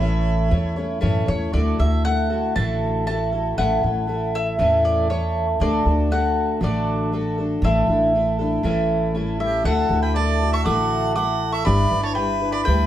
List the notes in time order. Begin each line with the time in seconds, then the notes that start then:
Already playing: A1 E4 C#5
0.00 A2 E3 A3 C#4 E4 C#5
0.50 E2 A3 C#4 E4 C#5
0.76 A3 C#4 E4 C#5
1.01 F#2 A2 E3 A3 C#4 E4 C#5
1.26 E2 A3 C#4 E4 C#5
1.53 D2 D3 A3 E4 F#4 A4 D5
1.79 D2 E4 F#4 A4 E5
2.05 A3 E4 F#4 A4 F#5
2.30 E4 F#4 A4
2.56 A1 D3 A3 E4 F#4 A4 A5
3.06 A3 E4 F#4 A4 A5
3.32 E4 F#4 A4
3.57 A1 A2 E3 A3 C#4 E4 A4 F#5
3.83 A1 A3 C#4 E4 A4
4.07 A3 C#4 E4 A4
4.35 E5
4.59 E2 A2 E3 A3 C#4 E4 A4
4.85 D5
5.09 A3 C#4 E4 A4 C#5
5.60 D2 D3 A3 D4 F#4 A4 D5
5.85 D2 D4 F#4 A4
6.11 A3 D4 F#4 A4 F#5
6.61 A1 D3 A3 D4 F#4 A4 D5
7.12 A3 D4 F#4 A4
7.38 D4 F#4 A4
7.62 A1 A2 D3 A3 D4 E4 A4 E5
7.88 A1 A3 D4 E4 A4
8.14 A3 D4 E4 A4
8.39 A3 D4 E4 A4
8.63 A1 A2 E3 A3 C#4 E4 A4
9.14 A3 C#4 E4 A4
9.40 A3 C#4 E4 G4 A4 E5
9.64 D2 D3 A3 E4 F#4 A4 F#5
9.89 D2 F#4 A4
9.93 E4
10.02 B4 G5
10.14 A3 E4 F#4 A4 D5 A5
10.42 E4 F#4 A4
10.52 E5 C#6
10.64 A1 D3 A3 E4 F#4 A4 F#5 D6
11.14 A3 E4 F#4 A4 F#5 D6
11.52 E5 C#6
11.65 G1 G3 D4 E4 B4 D5 B5
11.91 G1 D4 E4 B4
12.02 C#5 A5
12.14 G3 D4 E4 B4 G5
12.18 B4
12.42 D4 E4 B4
12.51 D5 B5
12.63 D2 G3 B4 G5
12.67 D4 E4 B4